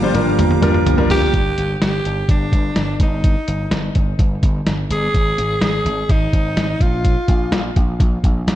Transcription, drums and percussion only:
0.15 closed hi-hat medium
0.15 mid tom medium
0.39 closed hi-hat medium
0.39 mid tom medium
0.51 mid tom medium
0.62 closed hi-hat medium
0.62 mid tom medium
0.74 mid tom medium
0.87 closed hi-hat medium
0.87 floor tom loud
0.98 floor tom medium
1.10 floor tom loud
1.10 open hi-hat medium
1.22 floor tom medium
1.34 kick medium
1.34 closed hi-hat medium
1.58 closed hi-hat medium
1.82 snare loud
1.82 closed hi-hat medium
2.05 closed hi-hat medium
2.29 kick medium
2.29 closed hi-hat medium
2.52 kick medium
2.52 closed hi-hat medium
2.76 snare medium
2.76 closed hi-hat medium
3.00 kick medium
3.00 closed hi-hat medium
3.24 kick medium
3.24 closed hi-hat medium
3.48 closed hi-hat medium
3.71 snare loud
3.71 closed hi-hat medium
3.95 kick medium
3.95 closed hi-hat medium
4.19 kick medium
4.19 closed hi-hat medium
4.43 kick medium
4.43 closed hi-hat medium
4.67 snare medium
4.67 closed hi-hat medium
4.91 closed hi-hat medium
5.14 kick loud
5.14 closed hi-hat medium
5.38 closed hi-hat medium
5.62 snare loud
5.62 closed hi-hat medium
5.86 closed hi-hat medium
6.09 kick medium
6.09 closed hi-hat medium
6.33 kick medium
6.33 closed hi-hat medium
6.57 snare medium
6.57 closed hi-hat medium
6.81 kick medium
6.81 closed hi-hat medium
7.05 kick medium
7.05 closed hi-hat medium
7.28 kick medium
7.28 closed hi-hat medium
7.52 snare loud
7.52 closed hi-hat medium
7.76 kick medium
7.76 closed hi-hat medium
8.00 kick medium
8.00 closed hi-hat medium
8.24 kick medium
8.24 closed hi-hat medium
8.48 snare medium
8.48 closed hi-hat medium

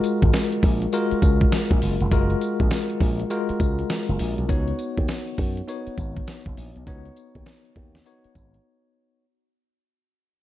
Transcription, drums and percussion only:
0.04 closed hi-hat medium
0.04 tambourine medium
0.22 kick medium
0.22 closed hi-hat medium
0.33 snare loud
0.33 closed hi-hat medium
0.33 tambourine loud
0.33 cowbell medium
0.52 closed hi-hat medium
0.63 kick loud
0.63 open hi-hat medium
0.82 closed hi-hat medium
0.93 closed hi-hat medium
0.93 tambourine medium
0.93 cowbell medium
1.11 closed hi-hat medium
1.22 kick medium
1.22 closed hi-hat medium
1.22 tambourine medium
1.41 kick loud
1.41 closed hi-hat soft
1.52 snare loud
1.52 closed hi-hat medium
1.52 tambourine medium
1.52 cowbell medium
1.71 kick loud
1.71 closed hi-hat medium
1.82 open hi-hat medium
1.82 tambourine medium
2.01 closed hi-hat medium
2.11 kick loud
2.11 closed hi-hat medium
2.11 tambourine medium
2.11 cowbell medium
2.30 closed hi-hat soft
2.41 closed hi-hat medium
2.41 tambourine medium
2.60 kick medium
2.60 closed hi-hat medium
2.71 snare loud
2.71 closed hi-hat medium
2.71 tambourine loud
2.71 cowbell medium
2.90 closed hi-hat medium
3.00 kick loud
3.00 open hi-hat medium
3.20 closed hi-hat medium
3.30 closed hi-hat medium
3.30 tambourine medium
3.30 cowbell medium
3.49 closed hi-hat medium
3.60 kick medium
3.60 closed hi-hat medium
3.60 tambourine medium
3.79 closed hi-hat soft
3.90 snare loud
3.90 closed hi-hat medium
3.90 tambourine medium
3.90 cowbell medium
4.08 closed hi-hat medium
4.19 open hi-hat medium
4.19 tambourine medium
4.38 closed hi-hat medium
4.49 kick loud
4.49 closed hi-hat medium
4.49 tambourine medium
4.49 cowbell medium
4.68 closed hi-hat soft
4.79 closed hi-hat medium
4.79 tambourine medium
4.98 kick medium
4.98 closed hi-hat medium
5.08 snare loud
5.08 closed hi-hat medium
5.08 tambourine medium
5.08 cowbell medium
5.27 closed hi-hat medium
5.38 kick medium
5.38 open hi-hat medium
5.57 closed hi-hat medium
5.68 closed hi-hat medium
5.68 tambourine medium
5.68 cowbell medium
5.87 closed hi-hat medium
5.98 kick medium
5.98 closed hi-hat medium
5.98 tambourine medium
6.17 kick loud
6.17 closed hi-hat medium
6.27 snare loud
6.27 closed hi-hat medium
6.27 tambourine loud
6.27 cowbell medium
6.46 kick loud
6.46 closed hi-hat medium
6.57 open hi-hat medium
6.57 tambourine medium
6.76 closed hi-hat medium
6.87 kick loud
6.87 closed hi-hat medium
6.87 tambourine medium
6.87 cowbell medium
7.05 closed hi-hat soft
7.16 closed hi-hat medium
7.16 tambourine medium
7.35 kick medium
7.35 closed hi-hat medium
7.46 snare loud
7.46 closed hi-hat medium
7.46 tambourine loud
7.46 cowbell medium
7.65 closed hi-hat medium
7.76 kick medium
7.76 closed hi-hat medium
7.95 snare medium
7.95 closed hi-hat medium
8.06 closed hi-hat medium
8.06 tambourine medium
8.06 cowbell medium
8.24 closed hi-hat soft
8.35 kick medium
8.35 closed hi-hat medium
8.35 tambourine medium
8.54 closed hi-hat soft

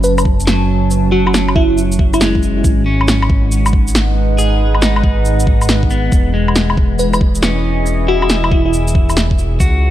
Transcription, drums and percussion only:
0.04 shaker medium
0.18 low woodblock medium
0.18 shaker medium
0.25 kick loud
0.40 shaker medium
0.47 snare loud
0.47 shaker medium
0.91 shaker medium
1.27 low woodblock medium
1.34 snare loud
1.34 shaker medium
1.48 low woodblock medium
1.56 kick loud
1.78 shaker medium
1.92 shaker medium
1.99 kick loud
2.14 low woodblock soft
2.14 shaker medium
2.21 snare loud
2.21 shaker medium
2.35 kick medium
2.43 shaker soft
2.64 kick loud
2.64 shaker medium
3.01 low woodblock soft
3.08 snare loud
3.08 shaker medium
3.22 low woodblock medium
3.30 kick loud
3.52 shaker medium
3.66 low woodblock medium
3.66 shaker medium
3.73 kick loud
3.88 shaker medium
3.95 snare loud
3.95 shaker medium
4.38 shaker medium
4.75 low woodblock soft
4.82 snare loud
4.82 shaker medium
4.96 low woodblock medium
5.04 kick loud
5.25 shaker medium
5.40 shaker medium
5.47 kick loud
5.61 low woodblock soft
5.61 shaker medium
5.69 snare loud
5.69 shaker medium
5.83 kick medium
5.90 shaker soft
6.12 kick loud
6.12 shaker medium
6.48 low woodblock soft
6.56 snare loud
6.56 shaker medium
6.70 low woodblock medium
6.77 kick loud
6.99 shaker medium
7.13 low woodblock medium
7.13 shaker medium
7.21 kick loud
7.35 shaker soft
7.43 snare loud
7.43 shaker medium
7.86 shaker medium
8.22 low woodblock medium
8.30 snare loud
8.30 shaker medium
8.44 low woodblock medium
8.52 kick loud
8.73 shaker medium
8.88 shaker medium
8.95 kick loud
9.10 low woodblock soft
9.10 shaker medium
9.17 snare loud
9.17 shaker medium
9.31 kick medium
9.38 shaker soft
9.60 kick loud
9.60 shaker medium

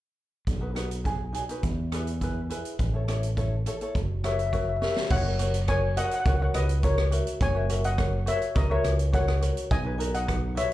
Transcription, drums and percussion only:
0.47 kick medium
0.47 closed hi-hat medium
0.76 cross-stick medium
0.76 closed hi-hat medium
0.91 closed hi-hat medium
1.05 kick medium
1.05 closed hi-hat soft
1.34 closed hi-hat medium
1.49 closed hi-hat soft
1.63 kick medium
1.63 closed hi-hat medium
1.92 cross-stick medium
1.92 closed hi-hat medium
2.07 closed hi-hat medium
2.21 kick medium
2.21 closed hi-hat medium
2.50 closed hi-hat medium
2.65 closed hi-hat medium
2.79 kick medium
2.79 closed hi-hat medium
3.08 cross-stick medium
3.08 closed hi-hat medium
3.23 closed hi-hat medium
3.37 kick medium
3.37 closed hi-hat soft
3.66 closed hi-hat medium
3.81 closed hi-hat soft
3.95 kick medium
3.95 closed hi-hat medium
4.24 cross-stick medium
4.24 closed hi-hat medium
4.39 closed hi-hat soft
4.53 kick medium
4.53 closed hi-hat soft
4.82 snare soft
4.96 snare medium
5.10 kick loud
5.10 crash loud
5.39 closed hi-hat medium
5.54 closed hi-hat medium
5.68 kick medium
5.68 cross-stick medium
5.68 closed hi-hat medium
5.97 closed hi-hat medium
6.11 closed hi-hat medium
6.25 kick loud
6.25 closed hi-hat medium
6.54 cross-stick medium
6.54 closed hi-hat medium
6.69 closed hi-hat medium
6.83 kick medium
6.83 closed hi-hat medium
6.98 cross-stick medium
7.12 closed hi-hat medium
7.27 closed hi-hat medium
7.41 kick loud
7.41 closed hi-hat medium
7.69 closed hi-hat medium
7.84 closed hi-hat medium
7.98 kick medium
7.98 cross-stick medium
7.98 closed hi-hat medium
8.27 closed hi-hat medium
8.42 closed hi-hat medium
8.55 kick loud
8.55 closed hi-hat medium
8.84 cross-stick medium
8.84 closed hi-hat medium
8.99 closed hi-hat medium
9.14 kick medium
9.14 closed hi-hat medium
9.28 cross-stick medium
9.42 closed hi-hat medium
9.57 closed hi-hat medium
9.71 kick loud
9.71 closed hi-hat medium
10.00 closed hi-hat medium
10.14 closed hi-hat medium
10.28 kick medium
10.28 cross-stick medium
10.28 closed hi-hat medium
10.57 closed hi-hat medium

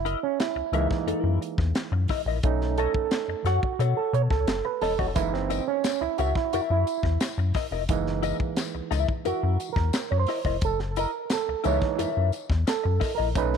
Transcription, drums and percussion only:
0.06 closed hi-hat medium
0.40 snare loud
0.40 closed hi-hat loud
0.73 closed hi-hat medium
0.91 kick medium
0.91 snare soft
1.08 closed hi-hat medium
1.42 closed hi-hat medium
1.58 kick medium
1.58 snare soft
1.75 snare loud
1.75 closed hi-hat medium
2.08 kick medium
2.08 snare soft
2.08 open hi-hat medium
2.43 kick loud
2.43 closed hi-hat loud
2.61 snare soft
2.78 closed hi-hat medium
2.94 kick medium
3.11 snare loud
3.11 closed hi-hat medium
3.45 snare soft
3.45 closed hi-hat medium
3.63 kick loud
3.80 closed hi-hat medium
4.14 closed hi-hat medium
4.30 kick medium
4.30 snare soft
4.48 snare loud
4.48 closed hi-hat loud
4.82 snare soft
4.82 open hi-hat medium
4.99 kick medium
5.16 kick loud
5.16 closed hi-hat loud
5.16 tambourine soft
5.34 snare soft
5.50 closed hi-hat medium
5.50 tambourine medium
5.84 snare loud
5.84 closed hi-hat medium
5.84 tambourine loud
6.18 closed hi-hat medium
6.18 tambourine medium
6.35 kick loud
6.35 snare soft
6.53 closed hi-hat medium
6.53 tambourine medium
6.87 closed hi-hat medium
6.87 tambourine soft
7.03 kick medium
7.03 snare soft
7.21 snare loud
7.21 closed hi-hat loud
7.21 tambourine medium
7.54 kick medium
7.54 snare soft
7.54 open hi-hat medium
7.54 tambourine soft
7.89 kick loud
7.89 closed hi-hat loud
7.89 tambourine soft
8.06 snare soft
8.23 closed hi-hat medium
8.23 tambourine medium
8.40 kick loud
8.57 snare loud
8.57 closed hi-hat loud
8.57 tambourine loud
8.92 snare soft
8.92 closed hi-hat medium
8.92 tambourine medium
9.09 kick medium
9.25 closed hi-hat medium
9.25 tambourine medium
9.60 closed hi-hat medium
9.60 tambourine medium
9.76 kick medium
9.76 snare soft
9.93 snare loud
9.93 closed hi-hat loud
9.93 tambourine medium
10.26 snare soft
10.26 open hi-hat medium
10.45 kick medium
10.61 kick loud
10.61 closed hi-hat loud
10.61 tambourine soft
10.79 snare soft
10.96 closed hi-hat medium
10.96 tambourine medium
11.30 snare loud
11.30 closed hi-hat medium
11.30 tambourine loud
11.64 closed hi-hat medium
11.64 tambourine medium
11.82 kick loud
11.82 snare soft
11.99 closed hi-hat loud
11.99 tambourine medium
12.32 closed hi-hat medium
12.32 tambourine soft
12.50 kick medium
12.50 snare soft
12.67 snare loud
12.67 closed hi-hat loud
12.67 tambourine medium
13.01 kick loud
13.01 snare soft
13.01 open hi-hat medium
13.01 tambourine soft
13.35 kick loud
13.35 closed hi-hat loud
13.35 tambourine soft
13.53 snare soft

